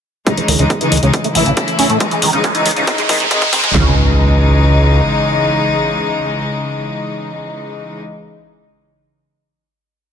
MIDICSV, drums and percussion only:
0, 0, Header, 1, 2, 480
1, 0, Start_track
1, 0, Key_signature, 4, "minor"
1, 0, Tempo, 434783
1, 294, Time_signature, 4, 2, 24, 8
1, 11179, End_track
2, 0, Start_track
2, 0, Title_t, "Drums"
2, 293, Note_on_c, 9, 36, 120
2, 294, Note_on_c, 9, 42, 78
2, 404, Note_off_c, 9, 36, 0
2, 404, Note_off_c, 9, 42, 0
2, 414, Note_on_c, 9, 42, 54
2, 524, Note_off_c, 9, 42, 0
2, 534, Note_on_c, 9, 46, 106
2, 644, Note_off_c, 9, 46, 0
2, 654, Note_on_c, 9, 42, 53
2, 764, Note_off_c, 9, 42, 0
2, 773, Note_on_c, 9, 36, 116
2, 774, Note_on_c, 9, 42, 79
2, 884, Note_off_c, 9, 36, 0
2, 884, Note_off_c, 9, 42, 0
2, 894, Note_on_c, 9, 42, 54
2, 1004, Note_off_c, 9, 42, 0
2, 1014, Note_on_c, 9, 46, 105
2, 1074, Note_on_c, 9, 42, 65
2, 1124, Note_off_c, 9, 46, 0
2, 1134, Note_off_c, 9, 42, 0
2, 1134, Note_on_c, 9, 42, 54
2, 1244, Note_off_c, 9, 42, 0
2, 1253, Note_on_c, 9, 36, 118
2, 1253, Note_on_c, 9, 42, 82
2, 1364, Note_off_c, 9, 36, 0
2, 1364, Note_off_c, 9, 42, 0
2, 1373, Note_on_c, 9, 42, 55
2, 1483, Note_off_c, 9, 42, 0
2, 1492, Note_on_c, 9, 46, 106
2, 1603, Note_off_c, 9, 46, 0
2, 1612, Note_on_c, 9, 42, 55
2, 1722, Note_off_c, 9, 42, 0
2, 1732, Note_on_c, 9, 42, 83
2, 1733, Note_on_c, 9, 36, 118
2, 1842, Note_off_c, 9, 42, 0
2, 1844, Note_off_c, 9, 36, 0
2, 1853, Note_on_c, 9, 42, 56
2, 1963, Note_off_c, 9, 42, 0
2, 1973, Note_on_c, 9, 46, 107
2, 2083, Note_off_c, 9, 46, 0
2, 2094, Note_on_c, 9, 42, 54
2, 2204, Note_off_c, 9, 42, 0
2, 2213, Note_on_c, 9, 36, 109
2, 2213, Note_on_c, 9, 42, 83
2, 2323, Note_off_c, 9, 42, 0
2, 2324, Note_off_c, 9, 36, 0
2, 2333, Note_on_c, 9, 42, 52
2, 2444, Note_off_c, 9, 42, 0
2, 2452, Note_on_c, 9, 46, 112
2, 2563, Note_off_c, 9, 46, 0
2, 2573, Note_on_c, 9, 42, 54
2, 2684, Note_off_c, 9, 42, 0
2, 2693, Note_on_c, 9, 36, 104
2, 2693, Note_on_c, 9, 42, 79
2, 2803, Note_off_c, 9, 42, 0
2, 2804, Note_off_c, 9, 36, 0
2, 2813, Note_on_c, 9, 42, 53
2, 2923, Note_off_c, 9, 42, 0
2, 2932, Note_on_c, 9, 46, 111
2, 2992, Note_on_c, 9, 42, 66
2, 3042, Note_off_c, 9, 46, 0
2, 3052, Note_off_c, 9, 42, 0
2, 3052, Note_on_c, 9, 42, 55
2, 3163, Note_off_c, 9, 42, 0
2, 3173, Note_on_c, 9, 36, 104
2, 3173, Note_on_c, 9, 42, 81
2, 3283, Note_off_c, 9, 42, 0
2, 3284, Note_off_c, 9, 36, 0
2, 3293, Note_on_c, 9, 42, 57
2, 3403, Note_off_c, 9, 42, 0
2, 3413, Note_on_c, 9, 36, 107
2, 3413, Note_on_c, 9, 46, 112
2, 3524, Note_off_c, 9, 36, 0
2, 3524, Note_off_c, 9, 46, 0
2, 3534, Note_on_c, 9, 42, 54
2, 3644, Note_off_c, 9, 42, 0
2, 3653, Note_on_c, 9, 36, 105
2, 3654, Note_on_c, 9, 42, 82
2, 3764, Note_off_c, 9, 36, 0
2, 3764, Note_off_c, 9, 42, 0
2, 3773, Note_on_c, 9, 36, 96
2, 3774, Note_on_c, 9, 42, 55
2, 3884, Note_off_c, 9, 36, 0
2, 3885, Note_off_c, 9, 42, 0
2, 3894, Note_on_c, 9, 36, 106
2, 3894, Note_on_c, 9, 46, 114
2, 4004, Note_off_c, 9, 36, 0
2, 4005, Note_off_c, 9, 46, 0
2, 4014, Note_on_c, 9, 36, 95
2, 4014, Note_on_c, 9, 42, 54
2, 4124, Note_off_c, 9, 36, 0
2, 4125, Note_off_c, 9, 42, 0
2, 4133, Note_on_c, 9, 38, 109
2, 4133, Note_on_c, 9, 39, 90
2, 4133, Note_on_c, 9, 43, 108
2, 4244, Note_off_c, 9, 38, 0
2, 4244, Note_off_c, 9, 39, 0
2, 4244, Note_off_c, 9, 43, 0
2, 11179, End_track
0, 0, End_of_file